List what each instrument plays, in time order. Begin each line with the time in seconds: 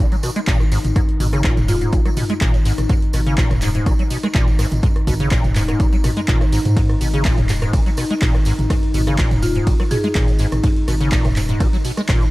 Already playing: analog synth pad D#4
0.12 acid bass F#3, closed hi-hat, tambourine
0.23 acid bass B2, cross-stick, open hi-hat, tambourine
0.36 acid bass G#3, closed hi-hat, tambourine
0.47 sub bass G#1, acid bass A#2, kick, clap, closed hi-hat, tambourine
0.60 acid bass G#2, cross-stick, tambourine
0.72 acid bass G#2, open hi-hat, tambourine
0.84 sub bass G#1, closed hi-hat, mid tom, tambourine
0.96 acid bass G#2, kick, cross-stick, closed hi-hat, tambourine
1.09 closed hi-hat
1.20 sub bass G#1, acid bass B2, mid tom, open hi-hat, tambourine
1.33 acid bass C#3, cross-stick, closed hi-hat, tambourine
1.44 acid bass A#2, kick, clap, closed hi-hat, tambourine
1.57 sub bass D#1, acid bass G#2, closed hi-hat, mid tom, tambourine
1.68 acid bass G#2, marimba F4, open hi-hat, tambourine
1.81 acid bass G#2, closed hi-hat, tambourine
1.92 sub bass G#1, acid bass B2, kick, closed hi-hat, tambourine
2.05 acid bass F#3, cross-stick, closed hi-hat, tambourine
2.17 acid bass B2, mid tom, open hi-hat, tambourine
2.29 acid bass G#3, closed hi-hat, tambourine
2.41 sub bass G#1, acid bass A#2, kick, cross-stick, clap, closed hi-hat, tambourine
2.54 acid bass G#2, closed hi-hat, tambourine
2.65 acid bass G#2, open hi-hat, tambourine
2.78 sub bass G#1, cross-stick, closed hi-hat, mid tom, tambourine
2.89 acid bass G#2, kick, closed hi-hat, tambourine
3.02 closed hi-hat
3.13 sub bass G#1, acid bass B2, cross-stick, open hi-hat, tambourine
3.26 acid bass C#3, closed hi-hat, tambourine
3.38 acid bass A#2, kick, clap, closed hi-hat, tambourine
3.51 sub bass D#1, acid bass G#2, cross-stick, closed hi-hat, mid tom, tambourine
3.62 acid bass G#2, clap, open hi-hat, tambourine
3.74 acid bass G#2, closed hi-hat, tambourine
3.86 sub bass G#1, acid bass B2, kick, cross-stick, closed hi-hat, tambourine
3.99 acid bass F#3, closed hi-hat, tambourine
4.10 acid bass B2, open hi-hat, tambourine
4.23 acid bass G#3, cross-stick, closed hi-hat, tambourine
4.35 sub bass G#1, acid bass A#2, kick, clap, closed hi-hat, tambourine
4.47 acid bass G#2, tambourine
4.59 acid bass G#2, cross-stick, open hi-hat, tambourine
4.72 sub bass G#1, closed hi-hat, mid tom, tambourine
4.83 acid bass G#2, kick, closed hi-hat, tambourine
4.96 cross-stick, closed hi-hat
5.07 sub bass G#1, acid bass B2, kick, mid tom, open hi-hat, tambourine
5.20 acid bass C#3, closed hi-hat, tambourine
5.30 acid bass A#2, kick, cross-stick, clap, closed hi-hat, tambourine
5.44 sub bass D#1, acid bass G#2, closed hi-hat, mid tom, tambourine
5.55 acid bass G#2, clap, open hi-hat, tambourine
5.68 acid bass G#2, cross-stick, closed hi-hat, tambourine
5.80 sub bass G#1, acid bass B2, kick, closed hi-hat, tambourine
5.92 acid bass F#3, closed hi-hat, tambourine
6.04 acid bass B2, cross-stick, mid tom, open hi-hat, tambourine
6.16 acid bass G#3, closed hi-hat, tambourine
6.28 sub bass G#1, acid bass A#2, kick, clap, closed hi-hat, tambourine
6.41 acid bass G#2, cross-stick, closed hi-hat, tambourine
6.52 acid bass G#2, open hi-hat, tambourine
6.65 sub bass G#2, closed hi-hat, mid tom, tambourine
6.77 acid bass G#2, kick, closed hi-hat, ride, tambourine
6.89 cross-stick, closed hi-hat
7.01 sub bass G#1, acid bass B2, open hi-hat, tambourine
7.14 acid bass C#3, closed hi-hat, tambourine
7.25 acid bass A#2, kick, cross-stick, clap, closed hi-hat, ride, tambourine
7.38 sub bass D#1, acid bass G#2, closed hi-hat, mid tom, tambourine
7.49 acid bass G#2, clap, open hi-hat, tambourine
7.62 acid bass G#2, cross-stick, closed hi-hat, tambourine
7.73 sub bass G#1, acid bass B2, kick, closed hi-hat, ride, tambourine
7.86 acid bass F#3, closed hi-hat, tambourine
7.97 acid bass B2, cross-stick, open hi-hat, tambourine
8.10 acid bass G#3, closed hi-hat, tambourine
8.22 sub bass G#1, acid bass A#2, kick, clap, closed hi-hat, ride, tambourine
8.34 acid bass G#2, cross-stick, tambourine
8.45 acid bass G#2, open hi-hat, tambourine
8.59 sub bass G#1, closed hi-hat, mid tom, tambourine
8.70 acid bass G#2, kick, cross-stick, closed hi-hat, ride, tambourine
8.83 closed hi-hat
8.94 sub bass G#1, acid bass B2, mid tom, open hi-hat, tambourine
9.07 acid bass C#3, cross-stick, closed hi-hat, tambourine
9.18 acid bass A#2, kick, clap, closed hi-hat, ride, tambourine
9.31 sub bass D#1, acid bass G#2, closed hi-hat, mid tom, tambourine
9.42 acid bass G#2, marimba F4, open hi-hat, tambourine
9.55 acid bass G#2, closed hi-hat, tambourine
9.67 sub bass G#1, acid bass B2, kick, closed hi-hat, ride, tambourine
9.80 acid bass F#3, cross-stick, closed hi-hat, tambourine
9.91 acid bass B2, marimba G#4, mid tom, open hi-hat, tambourine
10.04 acid bass G#3, closed hi-hat, tambourine
10.15 sub bass G#1, acid bass A#2, kick, cross-stick, clap, closed hi-hat, ride, tambourine
10.28 acid bass G#2, closed hi-hat, tambourine
10.39 acid bass G#2, open hi-hat, tambourine
10.52 sub bass G#1, cross-stick, closed hi-hat, mid tom, tambourine
10.63 acid bass G#2, kick, closed hi-hat, ride, tambourine
10.76 closed hi-hat
10.88 sub bass G#1, acid bass B2, cross-stick, open hi-hat, tambourine
11.01 acid bass C#3, closed hi-hat, tambourine
11.12 acid bass A#2, kick, clap, closed hi-hat, ride, tambourine
11.25 sub bass D#1, acid bass G#2, cross-stick, closed hi-hat, mid tom, tambourine
11.36 acid bass G#2, clap, open hi-hat, tambourine
11.49 acid bass G#2, closed hi-hat, tambourine
11.60 sub bass G#1, acid bass B2, kick, cross-stick, closed hi-hat, ride, tambourine
11.73 acid bass F#3, closed hi-hat, tambourine
11.85 acid bass B2, open hi-hat, tambourine
11.97 acid bass G#3, cross-stick, closed hi-hat, tambourine
12.09 sub bass G#1, acid bass A#2, kick, clap, closed hi-hat, ride, tambourine
12.22 acid bass G#2, tambourine